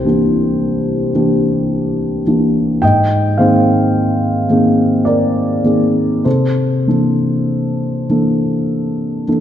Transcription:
0.00 2.85 C2 soft
0.00 0.06 G4 soft
0.00 2.81 C5 soft
0.05 1.11 E3 soft
0.05 1.11 A#3 soft
0.05 1.11 D4 soft
0.05 1.11 G4 soft
1.15 2.22 E3 soft
1.15 2.22 A#3 soft
1.15 2.22 D4 soft
1.15 2.23 G4 soft
2.27 2.79 E3 soft
2.27 2.79 A#3 soft
2.27 2.79 D4 soft
2.27 2.79 G4 soft
2.82 3.36 G#2 soft
2.82 3.34 D#5 soft
2.82 3.37 G5 medium
3.38 4.46 D#3 soft
3.38 4.46 A#3 soft
3.38 4.46 C4 soft
3.38 4.46 G#4 soft
3.38 5.02 C5 soft
3.38 5.06 F5 medium
4.50 5.61 D#3 soft
4.50 5.61 A#3 soft
4.50 5.61 C4 soft
4.50 5.61 G#4 soft
5.05 6.22 A#4 soft
5.05 6.25 D5 soft
5.64 6.21 D#3 soft
5.64 6.22 A#3 soft
5.64 6.22 C4 soft
5.64 6.22 G#4 soft
6.25 6.86 C3 soft
6.25 6.87 A4 soft
6.25 9.27 C5 soft
6.87 8.06 E3 soft
6.87 8.06 A#3 soft
6.87 8.06 D4 soft
6.87 8.06 A4 soft
8.09 9.23 E3 soft
8.09 9.24 A#3 soft
8.09 9.24 D4 soft
8.09 9.24 A4 soft
9.28 9.40 E3 soft
9.28 9.40 A#3 soft
9.28 9.40 D4 soft
9.28 9.40 A4 soft

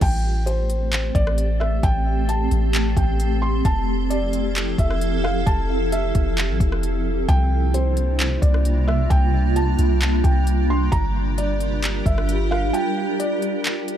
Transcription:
0.01 1.11 A1 loud
0.01 3.61 A3 medium
0.01 7.25 C4 medium
0.01 7.25 G4 medium
0.01 0.45 G5 loud
0.01 kick loud
0.01 closed hi-hat medium
0.01 crash loud
0.46 1.11 C5 medium
0.46 closed hi-hat medium
0.70 closed hi-hat medium
0.92 clap loud
0.92 closed hi-hat medium
1.15 1.80 A1 loud
1.15 1.58 D5 loud
1.15 kick medium
1.15 closed hi-hat medium
1.27 cross-stick medium
1.38 closed hi-hat medium
1.60 1.82 E5 medium
1.60 cross-stick medium
1.83 2.49 A1 loud
1.83 2.26 G5 loud
1.83 kick loud
1.83 closed hi-hat medium
2.29 2.93 A5 medium
2.29 closed hi-hat medium
2.51 2.95 A1 loud
2.51 closed hi-hat medium
2.74 clap loud
2.74 closed hi-hat medium
2.97 3.62 A1 loud
2.97 3.40 G5 medium
2.97 kick loud
2.97 closed hi-hat medium
3.20 closed hi-hat medium
3.42 3.64 C6 medium
3.65 4.75 F1 loud
3.65 7.25 F3 medium
3.65 7.25 E4 medium
3.65 7.25 A4 medium
3.65 4.08 A5 loud
3.65 kick loud
3.65 closed hi-hat medium
4.10 4.75 D5 medium
4.10 closed hi-hat medium
4.33 closed hi-hat medium
4.56 clap loud
4.56 closed hi-hat medium
4.78 5.44 F1 loud
4.78 5.22 E5 medium
4.78 kick medium
4.78 closed hi-hat medium
4.91 cross-stick medium
5.01 closed hi-hat medium
5.24 5.46 F5 medium
5.24 cross-stick medium
5.46 6.12 F1 loud
5.46 5.89 A5 loud
5.46 kick loud
5.46 closed hi-hat medium
5.92 6.79 E5 medium
5.92 closed hi-hat medium
6.15 6.51 F1 loud
6.15 kick loud
6.15 closed hi-hat medium
6.38 clap loud
6.38 closed hi-hat medium
6.49 6.60 A1 loud
6.60 7.26 F1 loud
6.60 kick loud
6.60 closed hi-hat medium
6.72 cross-stick medium
6.83 closed hi-hat medium
7.29 8.38 C2 loud
7.29 10.89 C3 medium
7.29 13.97 G3 medium
7.29 10.89 A#3 medium
7.29 13.97 D4 medium
7.29 10.89 F4 medium
7.29 7.71 G5 loud
7.29 kick loud
7.29 closed hi-hat medium
7.74 8.38 C5 medium
7.74 closed hi-hat medium
7.97 closed hi-hat medium
8.20 clap loud
8.20 closed hi-hat medium
8.42 9.08 C2 loud
8.42 8.85 D5 medium
8.42 kick medium
8.42 closed hi-hat medium
8.54 cross-stick medium
8.65 closed hi-hat medium
8.88 9.09 E5 medium
8.88 cross-stick medium
9.10 9.76 C2 loud
9.10 9.53 G5 loud
9.10 kick loud
9.10 closed hi-hat medium
9.56 10.20 A5 medium
9.56 closed hi-hat medium
9.79 10.22 C2 loud
9.79 closed hi-hat medium
10.01 clap loud
10.01 closed hi-hat medium
10.24 10.90 C2 loud
10.24 10.67 G5 medium
10.24 kick medium
10.24 closed hi-hat medium
10.47 closed hi-hat medium
10.70 10.91 C6 medium
10.92 12.02 G1 loud
10.92 13.97 F4 medium
10.92 13.97 G4 medium
10.92 13.97 A#4 medium
10.92 11.35 A#5 loud
10.92 kick loud
10.92 closed hi-hat medium
11.38 12.02 D5 medium
11.38 closed hi-hat medium
11.60 closed hi-hat medium
11.83 clap loud
11.83 closed hi-hat medium
12.06 12.71 G1 loud
12.06 12.49 E5 medium
12.06 kick loud
12.06 closed hi-hat medium
12.18 cross-stick medium
12.29 closed hi-hat medium
12.51 12.73 F5 medium
12.51 cross-stick medium
12.73 13.17 G5 loud
12.73 closed hi-hat medium
13.20 13.97 D5 medium
13.20 closed hi-hat medium
13.42 closed hi-hat medium
13.65 clap loud
13.65 closed hi-hat medium
13.88 closed hi-hat medium

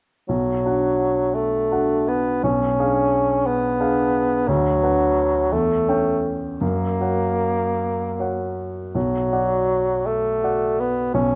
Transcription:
0.28 0.64 B1 soft
0.28 1.36 F#3 soft
0.65 1.68 D4 soft
0.65 1.68 F#4 soft
0.65 1.68 F#5 soft
1.35 2.10 A3 soft
1.72 2.40 D4 soft
1.72 2.40 F#4 soft
1.72 2.40 F#5 soft
2.08 2.43 B3 soft
2.43 2.77 B1 soft
2.43 3.48 C#4 medium
2.79 3.76 D4 soft
2.79 3.76 G#4 soft
2.79 3.77 F5 soft
3.46 4.49 B3 medium
3.80 4.43 D4 soft
3.80 4.44 G#4 soft
3.80 4.44 F5 soft
4.48 4.81 D2 soft
4.48 5.54 F#3 medium
4.83 5.48 D4 soft
4.83 5.48 B4 soft
4.83 5.49 F#5 soft
5.52 5.87 E2 soft
5.52 6.32 A3 medium
5.88 6.57 C#4 soft
5.88 6.58 C#5 soft
5.88 6.58 G5 soft
6.61 6.99 F#2 soft
6.61 8.54 A#3 soft
7.01 8.16 F#4 soft
7.01 8.16 C#5 soft
7.01 8.16 F#5 soft
8.19 8.91 F#4 soft
8.19 8.91 C#5 soft
8.19 8.91 F#5 soft
8.95 9.30 B1 soft
8.95 10.08 F#3 medium
9.32 10.39 F#4 soft
9.32 10.39 D5 soft
9.32 10.39 F#5 soft
10.06 10.81 A3 soft
10.43 11.10 F#4 soft
10.43 11.10 D5 soft
10.43 11.10 F#5 soft
10.80 11.14 B3 medium
11.14 11.35 B1 soft
11.14 11.35 C#4 medium

